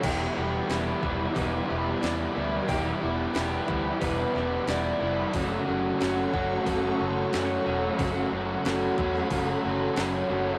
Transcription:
0.03 E1 E2 B2 E3 G3 B3 E4 G4 E5 D6, kick, open hi-hat, crash
0.37 E1 E3 G3 B3 E4
0.69 E1 E3 G3 B3 E4 G4, snare, open hi-hat
1.03 E1 E3 G3 B3 E4, kick
1.35 E1 E2 B2 E3 G3 B3 E4 B4, kick, open hi-hat
1.68 E1 E3 G3 B3 E4
2.02 E2 E3 G3 B3 E4 D5, snare, open hi-hat
2.35 D2 E3 G3 B3 E4
2.67 E1 E2 B2 E3 G3 B3 E4 G4 F#5, kick, open hi-hat
3.01 E1 E3 G3 B3 E4
3.34 E1 E3 G3 B3 E4 G4, snare, open hi-hat
3.68 D2 E3 G3 B3 E4, kick
4.01 E1 E2 B2 E3 G3 B3 E4 B4, kick, open hi-hat
4.34 E1 E3 G3 B3 E4, snare
4.66 E1 E3 G3 B3 E4 D5, snare, open hi-hat
5.00 F1 E3 G3 B3 E4
5.33 F#1 F#2 C#3 F#3 A3 C#4 F#4 A4 C#6, kick, open hi-hat
5.66 F#1 F#3 A3 C#4 F#4
5.98 F#1 F#3 A3 C#4 F#4, snare, open hi-hat
6.32 F#1 F#3 A3 C#4 F#4, kick
6.65 F#1 F#2 C#3 F#3 A3 C#4 F#4 A4, kick, open hi-hat
6.99 F#1 F#3 A3 C#4 F#4
7.32 F#2 F#3 A3 C#4 F#4 C#5, snare, open hi-hat
7.65 E1 F#3 A3 C#4 F#4
7.98 F#1 F#2 C#3 F#3 A3 C#4 F#4 B5, kick, open hi-hat
8.31 F#1 F#3 A3 C#4 F#4
8.64 F#1 F#3 A3 C#4 F#4, snare, open hi-hat
8.98 E2 F#3 A3 C#4 F#4, kick
9.16 snare
9.30 F#1 F#2 C#3 F#3 A3 C#4 F#4 A4, kick, open hi-hat
9.64 F#1 F#3 A3 C#4 F#4
9.96 F#1 F#3 A3 C#4 F#4 C#5, snare, open hi-hat
10.30 F#1 F#3 A3 C#4 F#4

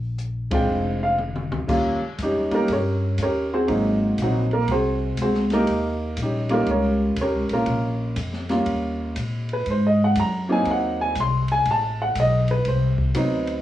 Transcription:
Already playing: A#1
0.19 closed hi-hat
0.51 G#3 C4 D4 F4 G5, kick, ride
0.69 F1
1.03 F5
1.19 mid tom
1.36 mid tom
1.51 D2, mid tom
1.68 D#2 G3 A#3 C#4 F4, kick, crash
2.02 muted upright bass stroke
2.18 F2 G4, kick, hi-hat pedal, ride
2.23 G3 C#4 D#4
2.35 D#2
2.51 C#2 G3 A#3 C#4 D#4 G4 A#4, ride
2.68 G2, kick, ride
2.73 C#4 G4 A#4 C#5
3.18 D#2, kick, hi-hat pedal, ride
3.22 C#4 G4 A#4 C#5
3.53 C4 F#4 G#4 C5
3.67 G#1 F#3 A#3 C4 D#4, kick, ride
4.18 A#1, kick, hi-hat pedal, ride
4.22 F#3 C4 D#4 F#4
4.51 A#3 A#4, ride
4.68 C2 F#4 G#4 C5, kick, ride
4.72 C4
5.17 C#2, kick, hi-hat pedal, ride
5.22 C4 F#4 G#4 C5
5.35 snare
5.50 A#3 D#4 G4 A#4, snare, ride
5.67 D#2, kick, ride
6.17 A#1, kick, hi-hat pedal, ride
6.22 G3 C#4 D#4 G4
6.49 G3 A#3 C#4 F4, ride
6.54 A#3 D#4 G4 A#4
6.67 C#2, kick, ride
6.71 C#4 G4 A#4 C#5
7.17 D#2, kick, hi-hat pedal, ride
7.22 C#4 G4 A#4 C#5
7.33 C#2
7.49 A#1 A#4, ride
7.54 A#3 C#4 F4
7.66 A#1, kick, ride
8.16 F2, kick, hi-hat pedal, ride
8.33 snare
8.49 G3 A#3 C#4 F4, snare, ride
8.66 D#2, kick, ride
9.16 A#2, kick, hi-hat pedal, ride
9.49 ride
9.53 B4
9.66 G#2, kick, ride
9.70 C5
9.87 D#5
10.04 F#5
10.15 F#2, kick, hi-hat pedal, ride
10.19 A#5
10.49 F#3 A#3 C4 D#4 G#5
10.65 D#2, kick, ride
10.71 F#5
11.01 G#5
11.15 C2, kick, hi-hat pedal, ride
11.20 C6
11.48 G#5, ride
11.65 A1, kick, ride
11.71 A5
12.02 F#5
12.15 B1, kick, hi-hat pedal, ride
12.20 D#5
12.48 B4, ride
12.65 C2 C5, kick, ride
12.98 kick
13.15 D2 F#3 B3 C4 D#4, hi-hat pedal, ride
13.47 ride

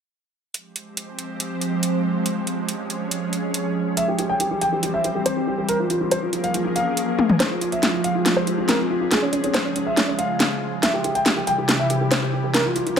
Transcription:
0.54 F3 G#3 C4 G4 C5, closed hi-hat
0.76 closed hi-hat
0.97 closed hi-hat
1.19 closed hi-hat
1.40 closed hi-hat
1.61 closed hi-hat
1.83 closed hi-hat
2.26 C#4 G#4 C#5, closed hi-hat
2.47 closed hi-hat
2.69 closed hi-hat
2.90 closed hi-hat
3.11 closed hi-hat
3.33 closed hi-hat
3.54 closed hi-hat
3.97 E3 G3 C4 G4 C5 E5, closed hi-hat
4.08 G4
4.19 G4, closed hi-hat
4.29 G5
4.40 G4, closed hi-hat
4.51 G4
4.61 G5, closed hi-hat
4.72 G4
4.83 G4, closed hi-hat
4.94 E5
5.04 G4, closed hi-hat
5.15 G4
5.26 C5, closed hi-hat
5.37 G4
5.47 G4
5.58 G4
5.69 F3 A#3 C#4 G#4 A#4, closed hi-hat
5.80 F4
5.90 F4, closed hi-hat
6.01 F4
6.11 C5, closed hi-hat
6.22 F4
6.33 F4, closed hi-hat
6.44 F5, closed hi-hat
6.54 F4, closed hi-hat
6.65 F4
6.76 F5, closed hi-hat
6.97 closed hi-hat
7.19 high tom
7.29 mid tom
7.40 F3 G#3 C4 G4 G#4 C5, snare, closed hi-hat
7.51 F4
7.61 F4, closed hi-hat
7.72 E5, closed hi-hat
7.83 F4, snare, closed hi-hat
7.94 F4
8.04 F5, closed hi-hat
8.15 F4
8.26 F4, snare, closed hi-hat
8.37 C5
8.47 F4, closed hi-hat
8.58 F4
8.69 A#4, snare, closed hi-hat
8.79 F4
8.90 F4
9.01 F4
9.11 C#3 G#3 F4 G#4, snare, closed hi-hat
9.22 C#4
9.33 C#4, closed hi-hat
9.44 C#4, closed hi-hat
9.54 C5, snare, closed hi-hat
9.65 C#4
9.76 C#4, closed hi-hat
9.87 E5
9.97 C#4, snare, closed hi-hat
10.08 C#4
10.19 F5, closed hi-hat
10.40 snare, closed hi-hat
10.83 C3 E3 G3 E4 G4 E5, snare, closed hi-hat
10.94 G4
11.04 G4, closed hi-hat
11.15 G5, closed hi-hat
11.26 G4, snare, closed hi-hat
11.37 G4
11.47 G5, closed hi-hat
11.58 G4
11.69 G4, snare, closed hi-hat
11.79 E5
11.90 G4, closed hi-hat
12.01 G4
12.11 C5, snare, closed hi-hat
12.22 G4
12.33 G4
12.44 G4
12.54 C#3 G#3 A#3 F4 G#4 A#4, snare, closed hi-hat
12.65 F4
12.76 F4, closed hi-hat
12.87 F4, closed hi-hat

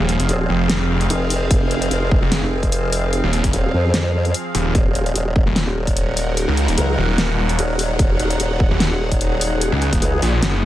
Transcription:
Already playing: F3 C4 G#4 F5
0.00 D#1
0.09 closed hi-hat
0.20 F1, closed hi-hat
0.29 D#1, closed hi-hat
0.49 F1
0.70 snare, closed hi-hat
0.90 F1
1.01 closed hi-hat
1.10 F1, closed hi-hat
1.30 open hi-hat
1.51 F1, kick, closed hi-hat
1.71 closed hi-hat
1.82 closed hi-hat
1.91 F1, closed hi-hat
2.11 kick
2.22 F1
2.32 snare, closed hi-hat
2.43 F1
2.63 kick, closed hi-hat
2.72 closed hi-hat
2.93 open hi-hat
3.13 closed hi-hat
3.24 D#1
3.33 closed hi-hat
3.44 F1, kick, closed hi-hat
3.53 D#1, closed hi-hat
3.74 F2
3.94 snare, closed hi-hat
4.25 closed hi-hat
4.34 closed hi-hat
4.55 D#1, open hi-hat
4.75 D#1 F#3 D#4 A#4 F#5, kick, closed hi-hat
4.95 closed hi-hat
5.06 closed hi-hat
5.16 D#1, closed hi-hat
5.36 kick
5.47 D#1
5.56 snare, closed hi-hat
5.67 D#1
5.87 kick, closed hi-hat
5.97 closed hi-hat
6.17 open hi-hat
6.37 closed hi-hat
6.48 C#2
6.57 closed hi-hat
6.68 D#1, closed hi-hat
6.78 C#2, closed hi-hat
6.98 D#1
7.18 snare, closed hi-hat
7.38 D#1
7.49 closed hi-hat
7.59 D#1, closed hi-hat
7.79 open hi-hat
7.99 D#1 G#4, kick, closed hi-hat
8.20 closed hi-hat
8.30 closed hi-hat
8.40 D#1, closed hi-hat
8.60 kick
8.71 D#1
8.80 snare, closed hi-hat
8.91 D#1
9.12 kick, closed hi-hat
9.21 closed hi-hat
9.41 open hi-hat
9.61 closed hi-hat
9.72 C#2
9.82 closed hi-hat
9.93 D#1, kick, closed hi-hat
10.02 C#2, closed hi-hat
10.22 A#1, open hi-hat
10.43 F#1, snare, closed hi-hat

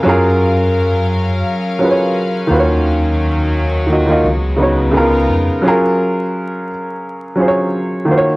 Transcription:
Already playing: F5
0.03 F#2 F#3 C#4 F4 A#4
0.08 G#4 A#4
1.79 F#3 C#4 F4
1.83 G#4 B4
1.91 C#5
2.47 D#2 D#3 F#3 A#3 F4
2.52 F#4 B4
2.60 C#5
3.87 D#3 A#3 F4
3.91 F#4 D#5
4.06 D#3 A#3 F4
4.10 F#4 D#5
4.24 C#2 C#3 G#3 B3
4.56 C#3 B3 D#4
4.61 F#4 C#5
4.91 C#2 C#3 G#3 B3 D#4 F4 A#4
4.96 F4 A#4
5.30 F2
5.62 F#3 C#4 F4
5.66 G#4 A#4
7.36 F#3 C#4 F4
7.40 G#4 C5
7.48 C#5
8.05 D#3 A#3 F4
8.10 F#4 C5
8.18 C#5

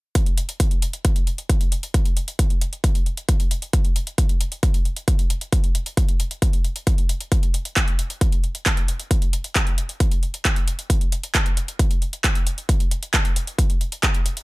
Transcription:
0.15 kick, closed hi-hat
0.26 closed hi-hat
0.38 closed hi-hat
0.49 closed hi-hat
0.60 kick, closed hi-hat
0.71 closed hi-hat
0.82 closed hi-hat
0.93 closed hi-hat
1.05 kick, closed hi-hat
1.16 closed hi-hat
1.27 closed hi-hat
1.38 closed hi-hat
1.49 kick, closed hi-hat
1.61 closed hi-hat
1.72 closed hi-hat
1.83 closed hi-hat
1.94 kick, closed hi-hat
2.05 closed hi-hat
2.17 closed hi-hat
2.28 closed hi-hat
2.39 kick, closed hi-hat
2.50 closed hi-hat
2.61 closed hi-hat
2.73 closed hi-hat
2.84 kick, closed hi-hat
2.95 closed hi-hat
3.06 closed hi-hat
3.17 closed hi-hat
3.29 kick, closed hi-hat
3.40 closed hi-hat
3.51 closed hi-hat
3.62 closed hi-hat
3.73 kick, closed hi-hat
3.85 closed hi-hat
3.96 closed hi-hat
4.07 closed hi-hat
4.18 kick, closed hi-hat
4.29 closed hi-hat
4.41 closed hi-hat
4.52 closed hi-hat
4.63 kick, closed hi-hat
4.74 closed hi-hat
4.85 closed hi-hat
4.96 closed hi-hat
5.08 kick, closed hi-hat
5.19 closed hi-hat
5.30 closed hi-hat
5.41 closed hi-hat
5.53 kick, closed hi-hat
5.64 closed hi-hat
5.75 closed hi-hat
5.86 closed hi-hat
5.97 kick, closed hi-hat
6.09 closed hi-hat
6.20 closed hi-hat
6.31 closed hi-hat
6.42 kick, closed hi-hat
6.53 closed hi-hat
6.64 closed hi-hat
6.76 closed hi-hat
6.87 kick, closed hi-hat
6.98 closed hi-hat
7.09 closed hi-hat
7.21 closed hi-hat
7.32 kick, closed hi-hat
7.43 closed hi-hat
7.54 closed hi-hat
7.65 closed hi-hat
7.76 kick, clap, closed hi-hat
7.88 closed hi-hat
7.99 closed hi-hat
8.10 closed hi-hat
8.21 kick, closed hi-hat
8.32 closed hi-hat
8.44 closed hi-hat
8.55 closed hi-hat
8.66 kick, clap, closed hi-hat
8.77 closed hi-hat
8.88 closed hi-hat
9.00 closed hi-hat
9.11 kick, closed hi-hat
9.22 closed hi-hat
9.33 closed hi-hat
9.44 closed hi-hat
9.55 kick, clap, closed hi-hat
9.67 closed hi-hat
9.78 closed hi-hat
9.89 closed hi-hat
10.00 kick, closed hi-hat
10.11 closed hi-hat
10.23 closed hi-hat
10.34 closed hi-hat
10.45 kick, clap, closed hi-hat
10.56 closed hi-hat
10.68 closed hi-hat
10.79 closed hi-hat
10.90 kick, closed hi-hat
11.01 closed hi-hat
11.12 closed hi-hat
11.23 closed hi-hat
11.35 kick, clap, closed hi-hat
11.46 closed hi-hat
11.57 closed hi-hat
11.68 closed hi-hat
11.79 kick, closed hi-hat
11.91 closed hi-hat
12.02 closed hi-hat
12.13 closed hi-hat
12.24 kick, clap, closed hi-hat
12.35 closed hi-hat
12.47 closed hi-hat
12.58 closed hi-hat
12.69 kick, closed hi-hat
12.80 closed hi-hat
12.91 closed hi-hat
13.03 closed hi-hat
13.14 kick, clap, closed hi-hat
13.25 closed hi-hat
13.36 closed hi-hat
13.47 closed hi-hat
13.59 kick, closed hi-hat
13.70 closed hi-hat
13.81 closed hi-hat
13.92 closed hi-hat
14.03 kick, clap, closed hi-hat
14.14 closed hi-hat
14.26 closed hi-hat
14.37 closed hi-hat

